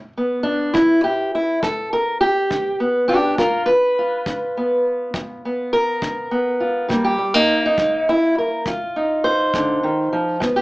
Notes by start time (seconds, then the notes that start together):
Already playing: G2
0.17 B3
0.43 D4
0.74 D3 E4, kick
1.04 G4
1.35 E4
1.63 G2 A4, kick
1.93 A#4
2.21 G4
2.50 D3, kick
2.80 B3
3.08 D4 G4
3.38 G2 F4 A#4, kick
3.66 B4
3.99 F4
4.26 D3, kick
4.57 B3
5.14 G2, kick
5.45 B3
5.73 A#4
6.02 D3, kick
6.31 B3
6.60 F4
6.88 C3 G3 A#3, kick
7.04 G4
7.18 G3
7.34 A#3 D#4
7.66 D#4
7.78 G3, kick
8.09 E4
8.38 A#4
8.66 F3 F4, kick
8.96 D#4
9.24 C5
9.54 D3, kick
9.83 D#3
10.13 F3
10.40 G2 B3, kick
10.56 G4